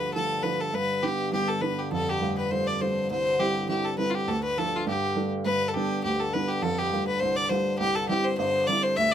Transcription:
Already playing: D2 G2 D3 F3 A3 D4 B4
0.14 F3 A3 D4 A4
0.43 F3 A3 D4 B4
0.61 A4
0.72 G2 D3 B4
1.03 G3 B3 D4 G4
1.32 G3 B3 D4 G4
1.48 A4
1.62 G3 B3 D4 B4
1.79 G4
1.91 F2 A4
2.09 G4
2.21 G3 A3 F4
2.38 B4
2.51 G3 A3 F4 C5
2.67 D5
2.81 G3 A3 F4 C5
3.11 C2 C5
3.39 G3 C4 E4 G4
3.69 G3 C4 E4 G4
3.85 A4
3.98 G3 C4 E4 B4
4.10 F4
4.15 G4
4.28 D2 A4
4.44 B4
4.57 F3 A3 D4 A4
4.76 F4
4.87 G2 G4
5.16 G3 A3 D4
5.46 G2 D3 B4
5.69 A4
5.74 G3 B3 D4 G4
6.04 D2 G4
6.20 A4
6.33 G3 B3 D4 B4
6.49 G4
6.62 F2 A4
6.79 G4
6.92 G3 A3 F4
7.07 B4
7.20 C2 C5
7.36 D5
7.49 G3 A3 F4 C5
7.79 C2 G4
7.95 A4
8.09 G3 C4 E4 G4
8.24 C5
8.38 G1 C5
8.67 G3 C4 E4 D5
8.83 C5
8.96 D2 E5

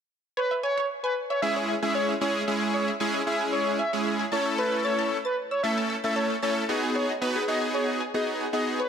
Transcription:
0.37 B4 C#5
0.51 E5
0.63 C#5 G#5
0.78 C#5
1.03 B4 G#5
1.30 C#5 E5
1.42 G#3 C#4 E4 G#4 E5 G#5
1.56 C#5
1.69 E5
1.82 G#3 C#4 E4 G#4 E5 G#5
1.95 C#5
2.09 E5
2.21 G#3 C#4 E4 G#4 C#5 G#5
2.48 G#3 C#4 E4 G#4 E5
2.62 G#5
2.74 C#5
2.88 E5
3.00 G#3 C#4 E4 G#4 G#5
3.14 C#5
3.26 G#3 C#4 E4 G#4 E5
3.41 G#5
3.52 C#5
3.67 E5
3.79 E5 G#5
3.93 G#3 C#4 E4 G#4 C#5
4.06 E5
4.19 G#5
4.32 A3 C#4 E4 A4 C#5 A5
4.46 E6
4.58 B4 A5
4.72 E6
4.84 C#5 A6
4.99 A5
5.25 B4 A6
5.51 C#5 E6
5.63 A3 C#4 E4 A4 E5 A6
5.78 A5
5.90 E6
6.04 A3 C#4 E4 A4 E5 A6
6.16 C#5 A5
6.30 E6
6.42 A3 C#4 E4 A4 C#5 A6
6.69 B3 D#4 F#4 G#4 D#5
6.83 G#5
6.95 G#4 C#5
7.09 D#5
7.21 B3 D#4 F#4 B4 G#5
7.36 G#4
7.48 B3 D#4 F#4 G#4 D#5
7.62 G#5
7.74 G#4 C#5
7.88 D#5
8.01 G#5
8.14 B3 D#4 F#4 G#4 D#5
8.27 D#5
8.41 G#5
8.53 B3 D#4 F#4 G#4 D#5
8.67 D#5
8.79 B4 C#5

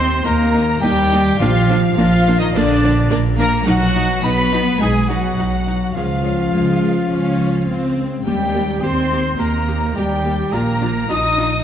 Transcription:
Already playing: D#2 D#3 A#3 C4 A#4 C5 C6
0.24 D#2 D#3 A#3 D#4 A#4 A#5
0.54 A#3 D#4
0.80 D#2 G3 A#3 D#4 G4 A#4 G5
1.11 A#3 D#4
1.38 A#1 A#2 F3 A#3 D4 F4 F5
1.68 F3 A#3 D4
1.96 A#1 F3 A#3 D4 F4 A#4 F5
2.26 F3 A#3 D4
2.39 D#3 D#4 D#5
2.53 A#1 A#2 D3 A#3 D4 D5
2.83 A#3 D4
3.10 A#1 A#3 D4 A#4
3.38 F3 A#3 D4 A#4 A#5
3.66 B1 B2 F#3 D#4 F#4 F#5
3.95 F#3 D#4
4.23 B1 B3 D#4 F#4 B4 B5
4.52 F#3 D#4
4.80 B1 B2 G#3 D#4 G#4 G#5
5.08 F#3 D#4 F#4 F#5
5.38 B1 D#4 F#4
5.66 F#3 D#4
5.94 C#2 C#3 F3 C#4 F4 G#4 F5
6.24 G#3 C#4 G#4
6.53 C#2 G#3 G#4
6.81 G#3
7.10 C#2 C#3 C#4
7.38 F4
7.66 C#2 C4 G#4
7.97 G#3
8.23 D#2 D#3 G3 A#3 G4 G5
8.53 A#3 G4
8.81 D#2 A#3 C4 G4 C5 C6
9.11 A#3 G4
9.39 D#2 D#3 A#3 G4 A#4 A#5
9.67 A#3 D#4 G4
9.95 D#2 G3 A#3 G4 G5
10.24 A#3 G4
10.52 A#1 A#2 A#3 D4 F4 A#4 A#5
10.81 F3 D4 F4
11.08 A#1 D4 D#4 F4 D#5 D#6
11.37 F3 D4 F4

